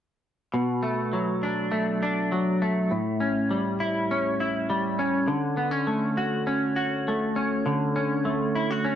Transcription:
0.54 2.91 B2 medium
0.83 1.71 A3 medium
1.13 2.31 F#3 medium
1.43 2.01 D4 medium
1.71 2.62 A3 medium
2.03 2.97 D4 medium
2.32 2.97 F#3 medium
2.62 3.20 A3 medium
2.91 5.28 A2 medium
3.20 4.11 C#4 soft
3.51 4.68 G3 medium
3.80 4.39 E4 medium
4.11 4.98 C#4 medium
4.40 5.35 E4 medium
4.70 5.35 G3 medium
4.99 5.57 C#4 medium
5.28 7.65 D3 medium
5.57 5.71 B3 medium
5.71 6.46 C#4 soft
5.87 7.08 A3 medium
6.17 6.76 F#4 medium
6.47 7.35 C#4 medium
6.76 8.55 F#4 medium
7.08 8.25 A3 medium
7.36 7.95 C#4 medium
7.66 8.95 D3 medium
7.96 8.83 C#4 medium
8.25 8.95 A3 medium
8.55 8.71 E4 medium
8.71 8.95 F#4 soft
8.85 8.95 C#4 medium

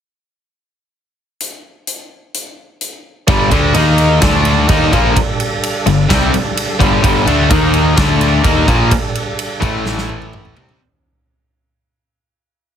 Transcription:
1.40 closed hi-hat medium
1.87 closed hi-hat medium
2.34 closed hi-hat medium
2.81 closed hi-hat medium
3.27 3.50 G1 medium
3.27 3.51 G2 medium
3.27 3.49 D3 loud
3.27 3.74 G3 medium
3.27 3.50 G3 loud
3.27 3.74 D4 medium
3.27 3.75 A4 medium
3.27 kick loud
3.27 ride loud
3.51 3.73 D2 medium
3.51 3.74 D3 loud
3.51 3.74 A3 loud
3.51 3.74 D4 loud
3.51 kick loud
3.51 ride medium
3.74 4.18 D#2 loud
3.74 4.20 D#3 loud
3.74 4.21 A#3 loud
3.74 4.21 D#4 loud
3.74 4.22 D#4 medium
3.74 4.22 A#4 medium
3.74 4.22 F5 medium
3.74 ride loud
3.98 ride medium
4.21 4.66 D2 medium
4.21 4.67 D3 medium
4.21 4.68 A3 medium
4.21 4.68 D4 loud
4.21 7.47 D4 medium
4.21 7.47 A4 medium
4.21 4.68 D5 medium
4.21 kick loud
4.21 snare loud
4.21 ride loud
4.45 ride medium
4.68 4.91 D#2 loud
4.68 4.91 D#3 loud
4.68 7.47 G3 medium
4.68 4.91 A#3 loud
4.68 4.91 D#4 loud
4.68 kick loud
4.68 ride loud
4.92 5.14 A#1 loud
4.92 5.15 A#2 loud
4.92 5.15 F3 loud
4.92 5.15 A#3 loud
4.92 kick medium
4.92 ride medium
5.16 kick loud
5.16 ride loud
5.40 ride medium
5.63 ride medium
5.86 6.08 G1 medium
5.86 6.05 G2 medium
5.86 6.05 D3 medium
5.86 ride medium
6.09 6.32 C2 medium
6.09 6.32 C3 medium
6.09 6.32 G3 loud
6.09 6.33 C4 loud
6.09 kick loud
6.09 snare loud
6.09 ride medium
6.32 muted distorted electric guitar stroke medium
6.32 muted overdriven electric guitar stroke medium
6.32 muted picked electric bass stroke soft
6.32 ride medium
6.57 ride loud
6.79 7.02 G1 loud
6.79 7.01 G2 medium
6.79 7.02 D3 medium
6.79 7.02 G3 loud
6.79 kick medium
6.79 ride medium
7.02 7.25 G1 medium
7.02 7.25 G2 loud
7.02 7.25 D3 medium
7.02 7.26 G3 loud
7.02 kick loud
7.02 ride loud
7.26 7.49 D2 medium
7.26 7.49 D3 loud
7.26 7.49 A3 loud
7.26 7.49 D4 loud
7.26 ride medium
7.50 7.94 D#2 loud
7.50 7.95 D#3 loud
7.50 7.96 A#3 loud
7.50 7.97 D#4 loud
7.50 7.97 D#4 medium
7.50 7.97 A#4 medium
7.50 7.97 F5 medium
7.50 kick loud
7.50 ride loud
7.74 ride medium
7.96 8.41 D2 medium
7.96 8.43 D3 medium
7.96 8.43 A3 medium
7.96 9.60 D4 medium
7.96 8.43 D4 loud
7.96 10.77 A4 medium
7.96 8.44 D5 medium
7.96 kick loud
7.96 snare loud
7.96 ride loud
8.21 ride medium
8.43 8.66 D#2 loud
8.43 8.67 D#3 loud
8.43 9.60 G3 medium
8.43 8.67 A#3 medium
8.43 8.67 D#4 loud
8.43 kick loud
8.43 ride medium
8.68 8.90 A#1 medium
8.68 8.91 A#2 medium
8.68 8.91 F3 loud
8.68 8.91 A#3 loud
8.68 kick loud
8.68 ride medium
8.91 kick loud
8.91 ride loud
9.15 ride medium
9.39 ride loud
9.61 10.53 A1 medium
9.61 10.55 A2 medium
9.61 10.55 E3 medium
9.61 10.55 A3 medium
9.61 10.56 A3 loud
9.61 10.55 E4 medium
9.61 kick loud
9.61 ride medium
9.86 snare medium
9.98 snare medium
10.09 high tom medium
10.22 high tom medium
10.33 mid tom medium
10.45 mid tom medium
10.56 10.78 C2 medium
10.56 10.79 C3 medium
10.56 10.79 G3 loud
10.56 10.80 G3 medium
10.56 10.79 C4 loud
10.56 10.80 D4 medium
10.56 floor tom loud
10.69 floor tom medium

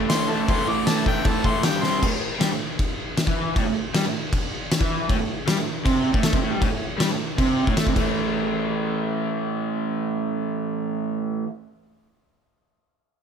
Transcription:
0.00 0.11 A3 loud
0.09 0.28 A2 loud
0.09 0.29 E3 loud
0.09 0.29 A3 loud
0.09 0.32 C6 loud
0.09 snare loud
0.09 crash medium
0.29 0.47 A2 medium
0.29 0.47 E3 loud
0.29 0.48 A3 loud
0.29 0.52 A5 loud
0.48 0.66 A2 loud
0.48 0.67 E3 loud
0.48 0.68 A3 loud
0.48 0.70 C6 loud
0.48 kick loud
0.48 crash medium
0.67 0.84 A2 medium
0.67 0.85 E3 loud
0.67 0.86 A3 loud
0.67 0.89 D6 loud
0.85 1.04 A2 loud
0.85 1.05 E3 loud
0.85 1.05 A3 loud
0.85 1.06 A5 loud
0.85 snare loud
0.85 crash medium
1.05 1.23 A2 medium
1.05 1.24 E3 loud
1.05 1.24 A3 loud
1.05 1.29 G5 loud
1.05 kick loud
1.25 1.42 A2 loud
1.25 1.43 E3 loud
1.25 1.44 A3 loud
1.25 1.48 A5 loud
1.25 kick loud
1.25 crash medium
1.44 1.63 A2 medium
1.44 1.63 E3 medium
1.44 1.63 A3 medium
1.44 1.64 C6 loud
1.44 kick loud
1.63 1.82 G2 loud
1.63 1.82 D3 loud
1.63 1.82 G3 loud
1.63 1.85 G5 loud
1.63 snare loud
1.63 crash medium
1.82 2.01 C3 loud
1.82 2.02 G3 loud
1.82 2.02 C4 loud
1.82 2.02 C6 loud
1.82 snare medium
2.02 2.10 A2 loud
2.02 kick loud
2.02 crash loud
2.02 crash medium
2.12 2.27 A2 medium
2.40 2.50 G3 loud
2.40 snare loud
2.40 crash medium
2.50 2.60 A2 medium
2.79 kick loud
2.79 crash medium
3.17 muted overdriven electric guitar stroke medium
3.17 snare loud
3.17 crash medium
3.27 3.56 E3 loud
3.27 kick loud
3.56 3.65 A2 loud
3.56 kick loud
3.56 crash medium
3.66 3.81 A2 medium
3.94 4.04 G3 loud
3.94 snare loud
3.94 crash medium
4.05 4.14 A2 medium
4.33 kick loud
4.33 crash medium
4.71 muted overdriven electric guitar stroke medium
4.71 snare loud
4.71 crash medium
4.80 5.09 E3 loud
4.80 kick loud
5.09 5.18 A2 loud
5.09 kick loud
5.09 crash medium
5.19 5.35 A2 medium
5.47 5.56 G3 loud
5.47 snare loud
5.47 crash medium
5.57 5.67 A2 medium
5.85 6.12 C3 loud
5.85 kick loud
5.85 crash medium
6.13 6.23 A2 loud
6.13 kick loud
6.23 6.33 A3 loud
6.23 snare loud
6.23 crash medium
6.33 6.41 C3 medium
6.33 kick loud
6.41 6.52 A2 loud
6.51 6.61 G3 loud
6.61 6.69 A2 loud
6.61 kick loud
6.61 crash medium
6.70 6.87 A2 medium
6.98 7.09 G3 loud
6.98 snare loud
6.98 crash medium
7.09 7.20 A2 medium
7.38 7.66 C3 loud
7.38 kick loud
7.38 crash medium
7.67 7.76 A2 loud
7.67 kick loud
7.77 7.86 A3 loud
7.77 snare loud
7.77 crash medium
7.86 7.93 C3 loud
7.86 kick loud
7.94 11.44 A2 medium
7.94 11.46 E3 loud
7.94 kick loud
7.94 crash medium
7.98 11.48 A3 loud

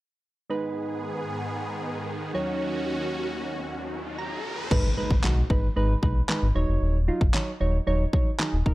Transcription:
0.50 2.33 G#2 medium
0.50 4.67 D#3 medium
0.50 2.30 G#3 medium
0.50 2.33 B3 medium
0.50 2.31 D#4 medium
0.50 2.32 G#4 medium
0.50 2.31 B4 medium
2.34 4.69 D#2 medium
2.34 4.41 F#3 medium
2.34 4.69 C#4 medium
2.34 4.41 D#4 medium
2.34 4.69 F#4 medium
2.34 4.41 C#5 medium
2.61 riser medium
4.18 4.67 A#5 medium
4.71 4.90 G#1 loud
4.71 4.88 G#3 loud
4.71 4.88 D#4 medium
4.71 4.88 B4 loud
4.71 kick loud
4.71 crash medium
4.71 impact medium
4.97 5.14 G#3 medium
4.97 5.15 D#4 medium
4.97 5.15 B4 loud
5.11 5.20 G#1 medium
5.11 kick medium
5.24 5.43 B1 loud
5.24 5.41 G#3 medium
5.24 5.41 D#4 medium
5.24 5.41 F#4 medium
5.24 snare medium
5.24 clap loud
5.50 5.69 G#1 medium
5.50 5.67 G#3 medium
5.50 5.67 D#4 medium
5.50 5.67 B4 medium
5.50 kick medium
5.76 5.96 G#1 loud
5.76 5.93 G#3 loud
5.76 5.94 D#4 medium
5.76 5.94 B4 loud
6.02 6.22 B1 medium
6.02 6.20 G#3 medium
6.02 6.20 D#4 medium
6.02 6.20 B4 loud
6.02 kick medium
6.29 6.46 G#3 medium
6.29 6.46 D#4 medium
6.29 6.46 B4 medium
6.29 snare loud
6.29 clap loud
6.42 6.52 G#1 medium
6.55 6.65 D#1 loud
6.55 6.97 F#3 medium
6.55 6.98 D#4 medium
6.55 6.98 C#5 loud
6.68 6.78 F1 medium
6.82 7.10 D#1 loud
7.08 7.25 F#3 medium
7.08 7.25 D#4 medium
7.08 7.25 F4 loud
7.21 7.31 F#1 medium
7.21 kick medium
7.34 7.51 F#3 medium
7.34 7.51 D#4 medium
7.34 7.52 C#5 medium
7.34 snare medium
7.34 clap loud
7.60 7.80 D#1 medium
7.60 7.78 F#3 medium
7.60 7.78 D#4 medium
7.60 7.78 C#5 medium
7.87 8.06 D#1 medium
7.87 8.04 F#3 loud
7.87 8.04 D#4 loud
7.87 8.04 C#5 loud
8.13 8.30 F#3 medium
8.13 8.30 D#4 medium
8.13 8.30 C#5 loud
8.13 kick loud
8.39 8.57 F#3 medium
8.39 8.57 D#4 medium
8.39 8.57 G#4 medium
8.39 snare loud
8.39 clap loud
8.53 8.62 D#1 loud
8.66 8.74 D#1 medium
8.66 8.74 F#3 medium
8.66 8.74 D#4 medium
8.66 8.74 A#4 medium
8.66 kick medium

